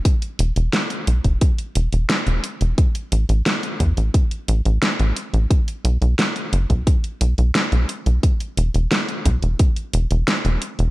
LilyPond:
<<
  \new Staff \with { instrumentName = "Analog synth bass" } { \clef bass \time 4/4 \key b \phrygian \tempo 4 = 88 r8 e,,16 e,,16 r8 b,,16 e,,16 r8 e,,16 e,,16 r16 e,,16 r16 e,,16 | r8 a,,16 a,,16 r8 e,16 a,,16 r8 a,,16 a,,16 r16 a,,16 r16 a,,16 | r8 b,,16 b,,16 r8 fis,,16 b,,16 r8 b,,16 b,,16 r16 b,,16 r16 b,,16 | r8 e,,16 e,,16 r8 b,,16 e,,16 r8 e,,16 e,,16 r16 e,,16 r16 e,,16 | }
  \new DrumStaff \with { instrumentName = "Drums" } \drummode { \time 4/4 <hh bd>16 hh16 hh16 hh16 <hh sn>16 hh16 hh16 <hh bd>16 <hh bd>16 hh16 hh16 hh16 <hh sn>16 hh16 hh16 hh16 | <hh bd>16 hh16 hh16 hh16 <hh sn>16 hh16 <hh bd>16 hh16 <hh bd>16 hh16 hh16 hh16 <hh sn>16 hh16 hh16 hh16 | <hh bd>16 hh16 hh16 hh16 <hh sn>16 hh16 hh16 <hh bd>16 <hh bd>16 hh16 hh16 hh16 <hh sn>16 hh16 hh16 hh16 | <hh bd>16 hh16 hh16 hh16 <hh sn>16 hh16 <hh bd>16 hh16 <hh bd>16 hh16 hh16 hh16 <hh sn>16 hh16 hh16 hh16 | }
>>